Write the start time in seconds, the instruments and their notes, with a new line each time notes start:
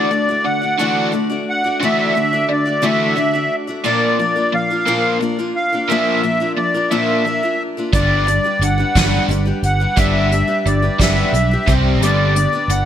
Already playing: steel-string acoustic guitar D3 E3 F#4 D5, accordion D5
0.11 overdriven electric guitar D3, steel-string acoustic guitar A3 D4 F#4 D5
0.29 steel-string acoustic guitar A3 D4 F#4 D5
0.45 overdriven electric guitar D3 D4, accordion F#5
0.62 steel-string acoustic guitar A3 D4 F#4 D5
0.79 steel-string acoustic guitar D3 E3 A3 D4 F#4 D5
1.12 overdriven electric guitar D3, steel-string acoustic guitar A3 D4 F#4 D5
1.30 steel-string acoustic guitar A3 D4 F#4 D5
1.49 accordion F#5
1.64 steel-string acoustic guitar A3 D4 F#4 D5
1.83 steel-string acoustic guitar D3 E3 A3 D4 F#4 D5, accordion E5
2.14 overdriven electric guitar D3, steel-string acoustic guitar A3 D4 F#4 D5
2.33 steel-string acoustic guitar A3 D4 F#4 D5
2.49 overdriven electric guitar D3 D4, accordion D5
2.66 steel-string acoustic guitar A3 D4 F#4 D5
2.82 steel-string acoustic guitar D3 E3 A3 D4 F#4 D5, accordion E5
3.16 overdriven electric guitar D3, steel-string acoustic guitar A3 D4 F#4 D5
3.33 steel-string acoustic guitar A3 D4 F#4 D5
3.67 steel-string acoustic guitar A3 D4 F#4 D5
3.84 steel-string acoustic guitar A#2 F3 A#3 D4 F4 A#4, accordion D5
4.19 overdriven electric guitar A#2 F3, steel-string acoustic guitar A#3 D4 F4 A#4
4.36 steel-string acoustic guitar A#3 D4 F4 A#4
4.52 overdriven electric guitar A#2 F3, accordion F5
4.70 steel-string acoustic guitar A#3 D4 F4 A#4
4.87 steel-string acoustic guitar A#2 F3 A#3 D4 F4 A#4
5.20 overdriven electric guitar A#2 F3, steel-string acoustic guitar A#3 D4 F4 A#4
5.39 steel-string acoustic guitar A#3 D4 F4 A#4
5.56 accordion F5
5.72 steel-string acoustic guitar A#3 D4 F4 A#4
5.88 steel-string acoustic guitar A#2 F3 A#3 D4 F4, accordion E5
5.92 steel-string acoustic guitar A#4
6.23 overdriven electric guitar A#2 F3, steel-string acoustic guitar A#3 D4 F4 A#4
6.40 steel-string acoustic guitar A#3 D4 F4 A#4
6.56 overdriven electric guitar A#2 F3, accordion D5
6.74 steel-string acoustic guitar A#3 D4 F4 A#4
6.90 steel-string acoustic guitar A#2 F3 A#3 D4 F4 A#4, accordion E5
7.25 overdriven electric guitar A#2 F3, steel-string acoustic guitar A#3 D4 F4 A#4
7.43 steel-string acoustic guitar A#3 D4 F4 A#4
7.77 steel-string acoustic guitar A#3 D4 F4 A#4
7.93 fingered electric bass G1, steel-string acoustic guitar G2 D3 G3 D4 G4 B4, overdriven electric guitar B3, accordion D5, kick, closed hi-hat
8.27 steel-string acoustic guitar G3 D4 G4 B4, closed hi-hat
8.44 steel-string acoustic guitar G3 D4 G4 B4
8.59 fingered electric bass G1, overdriven electric guitar G3 D4, accordion F#5, closed hi-hat
8.78 steel-string acoustic guitar G3 D4 G4 B4
8.95 fingered electric bass G1, steel-string acoustic guitar G2 D3 G3 D4 G4 B4, overdriven electric guitar B3, kick, snare, closed hi-hat
9.28 fingered electric bass G1, steel-string acoustic guitar G3 D4 G4 B4, closed hi-hat
9.46 steel-string acoustic guitar G3 D4 G4 B4
9.62 fingered electric bass G1, accordion F#5, closed hi-hat
9.80 steel-string acoustic guitar G3 D4 G4 B4
9.97 fingered electric bass G1, steel-string acoustic guitar G2 D3 G3 D4 G4 B4, overdriven electric guitar B3, accordion E5, kick, closed hi-hat
10.32 steel-string acoustic guitar G3 D4 G4 B4, closed hi-hat
10.48 steel-string acoustic guitar G3 D4 G4 B4
10.66 fingered electric bass G1, overdriven electric guitar G3 D4, accordion D5, closed hi-hat
10.82 steel-string acoustic guitar G3 D4 G4 B4
11.00 fingered electric bass G1, steel-string acoustic guitar G2 D3 G3 D4 G4 B4, overdriven electric guitar B3, accordion E5, kick, snare, closed hi-hat
11.33 fingered electric bass B1, steel-string acoustic guitar G3 D4 G4, closed hi-hat
11.37 steel-string acoustic guitar B4
11.51 steel-string acoustic guitar G3 D4 G4 B4
11.67 fingered electric bass C2, steel-string acoustic guitar C3 G3 C4 G4 C5, kick, closed hi-hat
12.00 fingered electric bass G1, steel-string acoustic guitar G2 G3 B3 D4 B4, overdriven electric guitar D3, accordion D5, closed hi-hat
12.04 steel-string acoustic guitar G4
12.35 overdriven electric guitar G2 D3, steel-string acoustic guitar B3 D4 G4, closed hi-hat
12.39 steel-string acoustic guitar B4
12.53 steel-string acoustic guitar B3 D4 G4 B4
12.68 fingered electric bass G1, overdriven electric guitar G2 D3, accordion F#5, closed hi-hat